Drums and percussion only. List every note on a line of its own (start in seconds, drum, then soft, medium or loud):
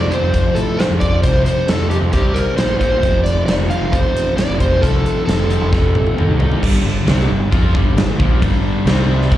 0.12 closed hi-hat medium
0.34 kick medium
0.34 closed hi-hat medium
0.56 closed hi-hat medium
0.80 snare loud
0.80 closed hi-hat medium
1.01 kick medium
1.01 closed hi-hat medium
1.23 kick loud
1.23 closed hi-hat medium
1.46 closed hi-hat medium
1.68 snare loud
1.68 closed hi-hat medium
1.91 closed hi-hat medium
2.13 kick medium
2.13 closed hi-hat medium
2.36 closed hi-hat medium
2.58 snare loud
2.58 closed hi-hat medium
2.81 kick medium
2.81 closed hi-hat medium
3.03 kick loud
3.03 closed hi-hat medium
3.26 closed hi-hat medium
3.48 snare loud
3.48 closed hi-hat medium
3.61 snare soft
3.71 closed hi-hat soft
3.93 kick medium
3.93 closed hi-hat medium
4.17 closed hi-hat medium
4.38 snare loud
4.38 closed hi-hat medium
4.60 kick medium
4.60 closed hi-hat medium
4.83 kick loud
4.83 closed hi-hat medium
5.06 closed hi-hat medium
5.29 snare loud
5.29 closed hi-hat medium
5.50 closed hi-hat medium
5.73 kick loud
5.73 snare medium
5.95 high tom medium
6.07 high tom medium
6.18 mid tom medium
6.40 floor tom medium
6.52 floor tom medium
6.63 kick loud
6.63 crash loud
6.63 crash medium
7.07 snare loud
7.07 crash medium
7.20 snare soft
7.52 kick loud
7.52 crash medium
7.75 kick loud
7.98 snare loud
7.98 crash medium
8.20 kick loud
8.42 kick medium
8.42 crash medium
8.87 snare loud
8.87 crash medium
9.22 snare soft
9.32 kick loud
9.32 crash medium